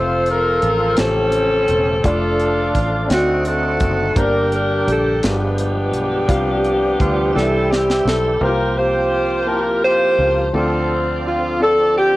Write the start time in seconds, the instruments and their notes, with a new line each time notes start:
Already playing: fingered electric bass F1, grand piano F3 C4 F4, tonewheel organ F3 C4, saxophone section F4 A4 C5
0.00 grand piano C5, tonewheel organ C5
0.26 saxophone section F4, closed hi-hat
0.30 saxophone section A#4
0.62 fingered electric bass A1, closed hi-hat
0.97 fingered electric bass A1, grand piano A2 A3 F4 G4 C5, tonewheel organ F3 A3 C4 G4, saxophone section C4 C#4 A4, snare, closed hi-hat
1.05 tonewheel organ C#3, grand piano C5
1.32 closed hi-hat
1.68 fingered electric bass E1, closed hi-hat
2.03 fingered electric bass F1, tonewheel organ F3 A3 D4 A4, grand piano A3 D4 F4 D5, saxophone section D4 F4, kick, closed hi-hat
2.08 saxophone section A4
2.40 closed hi-hat
2.75 fingered electric bass A1, kick, closed hi-hat
3.08 fingered electric bass D2, grand piano D3 C4 D#4 F#4 C#5, tonewheel organ D3 C4 D#4 F#4, saxophone section A3 C4, snare, closed hi-hat
3.13 saxophone section F#4, grand piano D5
3.45 saxophone section C4 F#4 A4, closed hi-hat
3.80 fingered electric bass F#1, kick, closed hi-hat
4.16 fingered electric bass G1, grand piano G2 A#3 D4 G4 C5, tonewheel organ D3 G3 A#3 G4, saxophone section D4 G4 A#4, kick, closed hi-hat
4.23 grand piano D5
4.52 saxophone section A#4, closed hi-hat
4.87 fingered electric bass A#1, closed hi-hat
4.92 saxophone section A4
5.22 fingered electric bass G1, grand piano G2 G#3 F4 G4 A#4, tonewheel organ F3 G#3 A#3 G4, snare, closed hi-hat
5.26 saxophone section B3 D4 G4, tonewheel organ B3
5.30 grand piano B4
5.58 closed hi-hat
5.93 fingered electric bass B1, closed hi-hat
6.26 fingered electric bass C2, tonewheel organ C3 F3 G3 G4, grand piano C3 G3 F4 G4 F5, kick, closed hi-hat
6.64 closed hi-hat
7.00 fingered electric bass D2, saxophone section F4, kick, closed hi-hat
7.33 fingered electric bass C2, tonewheel organ E3 G3 E4 G4, grand piano E3 G3 E4 G4 D5, saxophone section C4 E4 A4
7.38 snare
7.42 grand piano E5
7.70 saxophone section G4, snare
7.90 snare
8.05 fingered electric bass B1, saxophone section A4, snare
8.40 fingered electric bass C2, grand piano C3 A#3 E4 G4 C5, tonewheel organ F3 A#3 C4 G4, saxophone section A#4
8.44 saxophone section F4 G4, grand piano F4
8.78 saxophone section F4 G4 C5
9.46 grand piano A#3 E4 G4 A5, saxophone section A#4
9.54 grand piano F4
9.84 saxophone section F4 G4 C5
10.19 fingered electric bass C#2
10.53 fingered electric bass D2, grand piano D3 C4 F4 A4 D5, tonewheel organ E3 C4 D4 A4, saxophone section C4 F4 A4
10.61 tonewheel organ F3
11.26 saxophone section F4
11.59 grand piano C4 F4 A4 D5, saxophone section A4
11.98 saxophone section G4